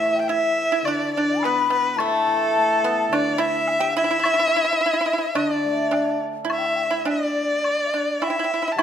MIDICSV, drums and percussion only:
0, 0, Header, 1, 2, 480
1, 0, Start_track
1, 0, Tempo, 566038
1, 1682, Time_signature, 4, 2, 24, 8
1, 5503, Tempo, 574713
1, 7455, End_track
2, 0, Start_track
2, 0, Title_t, "Drums"
2, 723, Note_on_c, 9, 76, 45
2, 808, Note_off_c, 9, 76, 0
2, 1211, Note_on_c, 9, 77, 40
2, 1296, Note_off_c, 9, 77, 0
2, 1684, Note_on_c, 9, 76, 53
2, 1768, Note_off_c, 9, 76, 0
2, 2652, Note_on_c, 9, 76, 47
2, 2736, Note_off_c, 9, 76, 0
2, 3116, Note_on_c, 9, 77, 45
2, 3200, Note_off_c, 9, 77, 0
2, 3592, Note_on_c, 9, 76, 59
2, 3677, Note_off_c, 9, 76, 0
2, 4541, Note_on_c, 9, 76, 46
2, 4626, Note_off_c, 9, 76, 0
2, 5024, Note_on_c, 9, 77, 39
2, 5109, Note_off_c, 9, 77, 0
2, 5510, Note_on_c, 9, 76, 50
2, 5594, Note_off_c, 9, 76, 0
2, 5984, Note_on_c, 9, 77, 37
2, 6067, Note_off_c, 9, 77, 0
2, 6467, Note_on_c, 9, 76, 43
2, 6550, Note_off_c, 9, 76, 0
2, 6949, Note_on_c, 9, 76, 39
2, 6949, Note_on_c, 9, 77, 38
2, 7033, Note_off_c, 9, 76, 0
2, 7033, Note_off_c, 9, 77, 0
2, 7420, Note_on_c, 9, 76, 56
2, 7455, Note_off_c, 9, 76, 0
2, 7455, End_track
0, 0, End_of_file